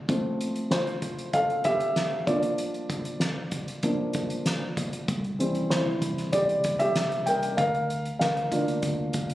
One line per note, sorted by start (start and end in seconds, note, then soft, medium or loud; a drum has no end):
0.00 0.11 D4 soft
0.00 0.11 A#4 medium
0.08 2.23 F3 soft
0.08 2.24 A3 soft
0.08 2.24 C4 soft
0.08 kick loud
0.08 closed hi-hat medium
0.41 closed hi-hat medium
0.56 closed hi-hat soft
0.71 1.30 F4 medium
0.71 1.36 C5 medium
0.71 snare loud
0.71 closed hi-hat medium
0.87 closed hi-hat soft
1.02 kick medium
1.02 closed hi-hat medium
1.19 closed hi-hat soft
1.33 1.63 A4 medium
1.33 1.66 F5 medium
1.33 kick medium
1.33 closed hi-hat medium
1.50 closed hi-hat soft
1.64 2.24 G4 medium
1.64 2.23 E5 loud
1.64 kick medium
1.64 closed hi-hat medium
1.80 closed hi-hat soft
1.96 snare medium
1.96 closed hi-hat medium
2.27 3.17 F3 soft
2.27 3.17 A#3 soft
2.27 3.18 D4 soft
2.27 3.18 F4 soft
2.27 3.17 D5 medium
2.27 kick medium
2.27 closed hi-hat medium
2.43 closed hi-hat medium
2.58 closed hi-hat medium
2.74 closed hi-hat soft
2.90 kick medium
2.90 closed hi-hat medium
3.05 closed hi-hat soft
3.20 snare medium
3.20 closed hi-hat medium
3.51 kick medium
3.51 closed hi-hat medium
3.68 closed hi-hat soft
3.83 4.12 F3 soft
3.83 4.12 A#3 soft
3.83 4.12 D4 soft
3.83 kick medium
3.83 closed hi-hat medium
4.13 kick medium
4.13 closed hi-hat medium
4.30 closed hi-hat soft
4.46 snare medium
4.46 closed hi-hat medium
4.77 kick medium
4.77 closed hi-hat medium
4.93 closed hi-hat soft
5.08 5.60 C2 medium
5.08 kick medium
5.08 closed hi-hat medium
5.24 closed hi-hat soft
5.39 5.81 E3 soft
5.39 5.81 G3 soft
5.39 5.81 C4 soft
5.39 closed hi-hat medium
5.55 closed hi-hat soft
5.70 5.96 C2 medium
5.70 6.30 E4 soft
5.70 6.29 C5 medium
5.70 snare loud
5.70 closed hi-hat medium
6.02 6.28 C2 medium
6.02 kick medium
6.02 closed hi-hat medium
6.18 snare soft
6.18 closed hi-hat soft
6.32 6.59 C2 medium
6.32 6.77 G4 medium
6.32 6.76 D5 medium
6.32 kick medium
6.32 closed hi-hat medium
6.49 closed hi-hat soft
6.64 6.90 C2 medium
6.64 kick medium
6.64 closed hi-hat medium
6.79 7.24 G4 medium
6.79 7.23 E5 medium
6.79 closed hi-hat soft
6.95 7.21 C2 medium
6.95 snare medium
6.95 closed hi-hat medium
7.12 closed hi-hat soft
7.26 7.52 C2 medium
7.26 7.56 A#4 medium
7.26 7.59 G5 medium
7.26 closed hi-hat medium
7.43 closed hi-hat medium
7.57 8.09 D2 medium
7.57 8.17 A#4 medium
7.57 8.18 F5 medium
7.57 kick loud
7.57 closed hi-hat medium
7.74 closed hi-hat soft
7.90 closed hi-hat medium
8.05 closed hi-hat soft
8.19 8.46 D2 medium
8.19 8.79 A#4 medium
8.19 8.78 F5 medium
8.19 snare medium
8.19 closed hi-hat medium
8.37 closed hi-hat soft
8.52 8.77 D2 medium
8.52 9.34 A#3 soft
8.52 9.34 D4 medium
8.52 9.34 F4 soft
8.52 kick medium
8.52 closed hi-hat medium
8.68 closed hi-hat soft
8.82 9.09 D2 medium
8.82 kick medium
8.82 closed hi-hat medium
9.13 9.34 D2 medium
9.13 kick medium
9.13 closed hi-hat medium
9.30 closed hi-hat soft